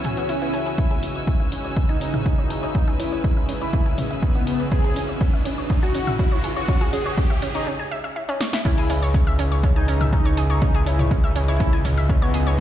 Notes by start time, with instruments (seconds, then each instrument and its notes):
Already playing: analog synth pad C#2 E3 B3 F#4 G#4, synth drone C#3, string section C#4 F#4 C#5 G#5 E6, swell
0.04 synth arpeggio sound G#4, closed hi-hat, mid tom, cabasa
0.17 synth arpeggio sound B3, closed hi-hat, cabasa
0.29 synth arpeggio sound E4, closed hi-hat, cabasa
0.41 synth arpeggio sound B3, analog synth lead E4, closed hi-hat, cabasa
0.54 synth arpeggio sound G#4, closed hi-hat, cabasa
0.66 synth arpeggio sound G#4, closed hi-hat, cabasa
0.78 synth drone C#3, analog synth pad C#3 G#3 D#4 E4, synth arpeggio sound C#4, analog synth lead E4, kick, closed hi-hat, riser
0.91 synth arpeggio sound G#4, closed hi-hat
1.03 synth arpeggio sound C#4, string section B4, open hi-hat
1.15 synth arpeggio sound C#5, closed hi-hat
1.27 synth arpeggio sound C#4, kick, closed hi-hat
1.40 synth arpeggio sound E5
1.52 synth arpeggio sound C#4, open hi-hat
1.65 synth arpeggio sound C#5, closed hi-hat
1.77 synth arpeggio sound C#4, kick, closed hi-hat
1.89 analog synth lead D#4, synth arpeggio sound G#5, closed hi-hat
2.01 synth arpeggio sound C#4, open hi-hat
2.14 synth arpeggio sound E5, closed hi-hat, mid tom
2.26 synth arpeggio sound C#4, analog synth lead D#4, kick, closed hi-hat
2.38 synth arpeggio sound C#5
2.50 synth arpeggio sound G#4, open hi-hat
2.63 analog synth lead D#4, synth arpeggio sound C#5, closed hi-hat
2.75 synth arpeggio sound C#4, kick, closed hi-hat
2.88 synth arpeggio sound G#4, closed hi-hat
3.00 synth arpeggio sound C#4, analog synth lead E4, open hi-hat
3.12 synth arpeggio sound C#5, closed hi-hat
3.24 synth arpeggio sound C#4, kick, closed hi-hat
3.37 synth arpeggio sound E5
3.49 synth arpeggio sound C#4, open hi-hat
3.61 analog synth lead E4, synth arpeggio sound C#5, closed hi-hat
3.73 synth arpeggio sound C#4, kick, closed hi-hat
3.86 synth arpeggio sound G#5, closed hi-hat
3.98 synth arpeggio sound C#4, open hi-hat, mid tom
4.11 synth arpeggio sound E5, closed hi-hat
4.22 synth arpeggio sound C#4, kick, closed hi-hat
4.35 analog synth lead B3, synth arpeggio sound C#5, closed hi-hat
4.47 synth arpeggio sound G#4, open hi-hat
4.60 synth arpeggio sound C#5, closed hi-hat
4.72 synth arpeggio sound C#4, analog synth lead G#4, kick, closed hi-hat
4.84 synth arpeggio sound G#4, closed hi-hat
4.96 synth arpeggio sound C#4, open hi-hat
5.09 synth arpeggio sound C#5, closed hi-hat
5.21 synth arpeggio sound C#4, kick, closed hi-hat
5.34 synth arpeggio sound E5
5.45 synth arpeggio sound C#4, open hi-hat
5.58 synth arpeggio sound C#5, closed hi-hat
5.70 synth arpeggio sound C#4, kick, closed hi-hat
5.83 analog synth lead F#4, synth arpeggio sound G#5, closed hi-hat
5.95 synth arpeggio sound C#4, open hi-hat
6.07 synth arpeggio sound E5, closed hi-hat, mid tom
6.19 synth arpeggio sound C#4, analog synth lead F#4, kick, closed hi-hat
6.32 synth arpeggio sound C#5
6.44 synth arpeggio sound G#4, open hi-hat
6.56 analog synth lead F#4, synth arpeggio sound C#5, closed hi-hat
6.68 synth arpeggio sound C#4, kick, closed hi-hat
6.81 synth arpeggio sound G#4, closed hi-hat
6.93 synth arpeggio sound C#4, analog synth lead G#4, open hi-hat
7.06 synth arpeggio sound C#5, closed hi-hat
7.18 synth arpeggio sound C#4, kick, closed hi-hat
7.30 synth arpeggio sound E5
7.42 synth arpeggio sound C#4, open hi-hat
7.55 analog synth lead D#4, synth arpeggio sound C#5, closed hi-hat
7.67 synth arpeggio sound C#4
7.79 synth arpeggio sound G#5
7.92 synth arpeggio sound E5
8.04 synth arpeggio sound E5
8.16 synth arpeggio sound E4
8.29 synth arpeggio sound C#4
8.41 synth arpeggio sound C#5, snare
8.53 synth arpeggio sound E4, snare
8.65 analog synth bass C#2, analog synth pad C#3 G#3 D#4 E4, synth arpeggio sound C#4, analog synth lead E4, kick, closed hi-hat, crash
8.78 synth arpeggio sound G#4, closed hi-hat
8.90 synth arpeggio sound C#4, open hi-hat
9.02 synth arpeggio sound C#5, closed hi-hat
9.14 synth arpeggio sound C#4, kick, closed hi-hat
9.27 synth arpeggio sound E5
9.39 synth arpeggio sound C#4, open hi-hat
9.52 synth arpeggio sound C#5, closed hi-hat
9.63 synth arpeggio sound C#4, kick, closed hi-hat
9.76 analog synth lead D#4, synth arpeggio sound G#5, closed hi-hat
9.88 synth arpeggio sound C#4, open hi-hat
10.01 synth arpeggio sound E5, closed hi-hat, mid tom
10.13 synth arpeggio sound C#4, analog synth lead D#4, kick, closed hi-hat
10.25 synth arpeggio sound C#5
10.37 synth arpeggio sound G#4, open hi-hat
10.50 analog synth lead D#4, synth arpeggio sound C#5, closed hi-hat
10.62 synth arpeggio sound C#4, kick, closed hi-hat
10.75 synth arpeggio sound G#4, closed hi-hat
10.86 synth arpeggio sound C#4, analog synth lead E4, open hi-hat
10.99 synth arpeggio sound C#5, closed hi-hat, mid tom
11.11 synth arpeggio sound C#4, kick, closed hi-hat
11.24 synth arpeggio sound E5
11.36 synth arpeggio sound C#4, open hi-hat
11.48 analog synth lead E4, synth arpeggio sound C#5, closed hi-hat
11.60 synth arpeggio sound C#4, kick, closed hi-hat
11.73 synth arpeggio sound G#5, closed hi-hat
11.85 synth arpeggio sound C#4, open hi-hat, mid tom
11.97 synth arpeggio sound E5, closed hi-hat
12.09 synth arpeggio sound C#4, kick, closed hi-hat
12.22 analog synth lead B3, synth arpeggio sound C#5
12.34 synth arpeggio sound G#4, open hi-hat
12.47 synth arpeggio sound C#5, closed hi-hat